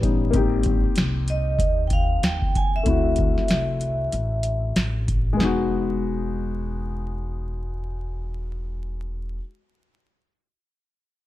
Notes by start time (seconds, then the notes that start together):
Already playing: A1
0.01 G3 B3 C#4 D#4, kick, closed hi-hat
0.31 G#1 A#3 C4, kick, closed hi-hat
0.35 D#4 G4
0.63 kick, closed hi-hat
0.85 muted upright bass stroke
0.96 C2, snare, closed hi-hat
1.28 D#5, closed hi-hat
1.59 D#2, kick, closed hi-hat
1.87 G5, kick, closed hi-hat
1.93 F5
2.23 D#2 G5, snare, closed hi-hat
2.42 kick
2.55 G#5, kick, closed hi-hat
2.76 E5
2.83 D2 A3 C4 E4, kick, closed hi-hat
2.90 F#4
3.16 kick, closed hi-hat
3.38 snare
3.48 C2, snare, closed hi-hat
3.81 closed hi-hat
4.12 A1, closed hi-hat
4.43 closed hi-hat
4.76 A1, snare, closed hi-hat
5.08 kick, closed hi-hat
5.33 G#3 B3
5.39 E1 D#4, snare
5.45 F#4